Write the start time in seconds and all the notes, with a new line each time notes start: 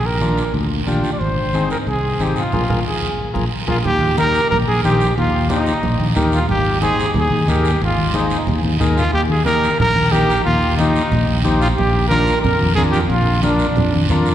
Already playing: A#1
0.06 A#4
0.21 D4 F4 A#4, high conga, short guiro
0.38 short guiro
0.54 D2, long guiro
0.87 A#1 D4 F4 G4, high conga, short guiro
1.04 short guiro
1.12 D5
1.20 G#1 C5, long guiro
1.53 C4 D#4 G#4, high conga, short guiro
1.71 A#4, short guiro
1.87 C2 G#4, long guiro
2.20 G#1 C4 D#4 G4 G#4, high conga, short guiro
2.36 F4, short guiro
2.52 A#1 F4 G#4 A#4, low conga, long guiro
2.68 A#1 F4 G#4 A#4, low conga, long guiro
2.86 G#4
3.34 A#1 F4 G#4 A#4, low conga, long guiro
3.67 A#1 F4 G#4 A#4, low conga, long guiro
3.85 D#2 G4, high conga, low conga, long guiro
4.01 high conga
4.17 D#4 G4 A#4, high conga, short guiro
4.34 short guiro
4.50 A#1 A#4, high conga, low conga, long guiro
4.68 A#1 G#4
4.84 A#1 D#4 G4 C5, high conga, short guiro
5.01 short guiro
5.17 D#2 F4, high conga, long guiro
5.49 D#4 G4 C5, high conga, short guiro
5.67 short guiro
5.83 A#1, high conga, low conga, long guiro
6.00 A#1, high conga
6.15 D#2 D#4 G4 A#4, high conga, low conga, short guiro
6.32 F4, short guiro
6.49 G#1 G4, high conga, low conga, long guiro
6.81 D#4 G#4 C5, high conga, short guiro
7.00 short guiro
7.14 D#2 G#4, high conga, low conga, long guiro
7.30 D#2, high conga
7.48 D#2 D#4 G4 G#4 A#4, high conga, short guiro
7.65 short guiro
7.81 G#1 F4, high conga, long guiro
7.98 high conga
8.14 D#4 G#4 C5, high conga, short guiro
8.30 short guiro
8.47 D#2, high conga, low conga, long guiro
8.64 D#2, high conga
8.80 D#2 D#4 G#4 A#4, high conga, low conga, short guiro
8.97 F4, short guiro
9.13 D#2 G4, high conga, long guiro
9.30 G#4, high conga
9.45 D#4 G4 A#4, high conga, short guiro
9.64 short guiro
9.80 A#1 A#4, high conga, low conga, long guiro
9.96 A#1, high conga
10.12 A#1 D#4 G4 A#4, high conga, short guiro
10.30 short guiro
10.45 D#2 F4, high conga, long guiro
10.77 D#4 G4 C5, high conga, short guiro
10.96 short guiro
11.12 A#1, high conga, low conga, long guiro
11.29 A#1
11.44 A#1 D#4 G4 C5, high conga, short guiro
11.60 F4, short guiro
11.76 A#1 G4, high conga, low conga, long guiro
12.08 D4 F4 A#4, high conga, short guiro
12.27 short guiro
12.41 F2 A#4, high conga, low conga, long guiro
12.60 F2, high conga
12.75 F2 D4 F4 G#4 A#4, high conga, low conga, short guiro
12.91 G4, short guiro
13.08 A#1 F4, high conga, long guiro
13.43 D4 F4 A#4, high conga, short guiro
13.59 short guiro
13.76 F2, high conga, low conga, long guiro
13.94 F2, high conga
14.09 F2 D4 F4 A#4, high conga, low conga, short guiro
14.26 short guiro